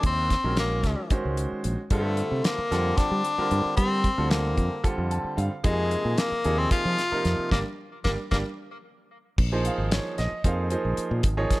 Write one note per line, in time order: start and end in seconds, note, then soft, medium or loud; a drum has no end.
0.03 0.34 D#2 medium
0.03 0.55 C4 medium
0.03 kick loud
0.03 closed hi-hat medium
0.30 kick medium
0.30 snare soft
0.30 closed hi-hat medium
0.44 0.84 A#1 medium
0.44 0.99 D#3 medium
0.44 0.99 G#3 medium
0.44 0.99 C#4 medium
0.44 0.99 F#4 medium
0.44 0.99 A#4 medium
0.57 1.14 A#3 medium
0.57 snare loud
0.57 closed hi-hat medium
0.83 0.94 C#2 medium
0.83 kick medium
0.83 snare soft
0.83 closed hi-hat medium
1.10 1.77 D#3 medium
1.10 1.77 G#3 medium
1.10 1.77 C#4 medium
1.10 1.77 F#4 medium
1.10 1.77 C5 medium
1.10 muted fretless electric bass stroke soft
1.10 kick medium
1.10 closed hi-hat medium
1.25 1.45 C#2 medium
1.37 closed hi-hat medium
1.52 muted fretless electric bass stroke soft
1.64 1.75 A#1 medium
1.64 closed hi-hat medium
1.90 2.21 G2 medium
1.90 2.57 D3 medium
1.90 2.57 G3 medium
1.90 2.46 A3 medium
1.90 2.57 C4 medium
1.90 2.57 F4 medium
1.90 2.57 A4 medium
1.90 kick loud
1.90 closed hi-hat medium
2.17 closed hi-hat medium
2.31 2.41 C3 medium
2.44 2.99 A#3 medium
2.44 snare loud
2.44 closed hi-hat medium
2.58 muted fretless electric bass stroke soft
2.71 2.91 F2 medium
2.71 3.26 D3 medium
2.71 3.26 G3 medium
2.71 3.26 C4 medium
2.71 3.26 F4 medium
2.71 3.26 A4 medium
2.71 snare soft
2.71 closed hi-hat medium
2.97 3.76 D4 medium
2.97 kick medium
2.97 snare soft
2.97 closed hi-hat medium
3.11 3.21 G3 medium
3.24 closed hi-hat medium
3.38 4.04 D3 medium
3.38 4.04 G3 medium
3.38 4.04 C4 medium
3.38 4.04 F4 medium
3.38 4.04 A#4 medium
3.38 muted fretless electric bass stroke soft
3.51 3.61 G2 medium
3.51 closed hi-hat medium
3.65 muted fretless electric bass stroke soft
3.77 4.08 G3 medium
3.77 4.32 C4 medium
3.77 kick loud
3.77 closed hi-hat medium
4.04 kick medium
4.04 closed hi-hat soft
4.17 4.58 D2 medium
4.17 4.73 D3 medium
4.17 4.73 G3 medium
4.17 4.73 C4 medium
4.17 4.72 F4 medium
4.17 4.73 A4 medium
4.30 4.91 A#3 medium
4.30 snare medium
4.30 closed hi-hat medium
4.57 4.68 F2 medium
4.57 kick medium
4.57 closed hi-hat soft
4.84 5.50 D3 medium
4.84 5.50 G3 medium
4.84 5.50 C4 medium
4.84 5.50 F4 medium
4.84 5.50 A4 medium
4.84 muted fretless electric bass stroke soft
4.84 kick medium
4.84 closed hi-hat medium
4.98 5.18 F2 medium
5.11 5.36 A5 medium
5.11 closed hi-hat medium
5.24 muted fretless electric bass stroke soft
5.37 5.48 G2 medium
5.37 5.62 F5 medium
5.37 closed hi-hat medium
5.64 5.95 F2 medium
5.64 6.30 C3 medium
5.64 6.30 F3 medium
5.64 6.20 G#3 medium
5.64 6.30 A#3 medium
5.64 6.30 D#4 medium
5.64 6.30 G#4 medium
5.64 kick loud
5.64 closed hi-hat medium
5.91 closed hi-hat medium
6.05 6.15 A#2 medium
6.18 6.60 A#3 medium
6.18 snare medium
6.18 closed hi-hat medium
6.32 muted fretless electric bass stroke soft
6.44 6.65 D#2 medium
6.44 6.99 C3 medium
6.44 7.00 F3 medium
6.44 7.00 A#3 medium
6.44 7.00 D#4 medium
6.44 7.00 G#4 medium
6.44 closed hi-hat medium
6.58 6.71 C4 medium
6.71 7.48 F4 loud
6.71 kick medium
6.71 closed hi-hat medium
6.85 6.95 F3 medium
6.98 snare soft
6.98 closed hi-hat medium
7.12 7.52 C3 medium
7.12 7.52 F3 medium
7.12 7.51 A#3 medium
7.12 7.52 D#4 medium
7.12 7.52 A#4 medium
7.12 muted fretless electric bass stroke soft
7.25 7.35 F2 medium
7.25 snare soft
7.25 closed hi-hat medium
7.39 muted fretless electric bass stroke soft
7.51 7.62 G1 medium
7.51 7.61 G3 medium
7.51 7.58 A#3 medium
7.51 7.61 A#3 medium
7.51 7.61 D4 medium
7.51 kick medium
7.51 snare medium
8.04 8.15 G1 medium
8.04 8.14 G3 medium
8.04 8.11 A#3 medium
8.04 8.14 A#3 medium
8.04 8.14 D4 medium
8.04 kick medium
8.04 snare medium
8.31 8.42 G1 medium
8.31 8.41 G3 medium
8.31 8.38 A#3 medium
8.31 8.41 A#3 medium
8.31 8.41 D4 medium
8.31 kick medium
8.31 snare medium
9.38 9.69 A#1 medium
9.38 kick loud
9.38 crash medium
9.52 10.28 F3 medium
9.52 10.28 A#3 medium
9.52 10.28 D#4 medium
9.52 10.28 G#4 medium
9.52 10.28 C5 medium
9.65 9.91 F5 medium
9.65 closed hi-hat medium
9.78 9.98 G#1 medium
9.91 10.18 C#5 medium
9.91 snare loud
9.91 closed hi-hat medium
10.18 10.29 A#1 medium
10.18 10.44 D#5 medium
10.18 snare soft
10.18 closed hi-hat medium
10.32 muted fretless electric bass stroke soft
10.44 10.75 F2 medium
10.44 10.66 F3 medium
10.44 10.66 A#3 medium
10.44 10.67 D#4 medium
10.44 10.67 G#4 medium
10.44 10.66 C5 medium
10.44 11.21 F5 medium
10.44 kick medium
10.44 closed hi-hat medium
10.70 11.26 F3 medium
10.70 11.26 A#3 medium
10.70 11.26 D#4 medium
10.70 11.26 G#4 medium
10.70 11.26 C5 medium
10.70 closed hi-hat medium
10.85 10.95 A#1 medium
10.97 closed hi-hat medium
11.11 11.21 A#2 medium
11.23 11.44 G#1 medium
11.23 kick loud
11.23 closed hi-hat medium
11.37 11.60 F3 medium
11.37 11.60 A#3 medium
11.37 11.60 D#4 medium
11.37 11.60 G#4 medium
11.37 11.60 C#5 loud
11.51 kick medium
11.51 snare soft
11.51 closed hi-hat medium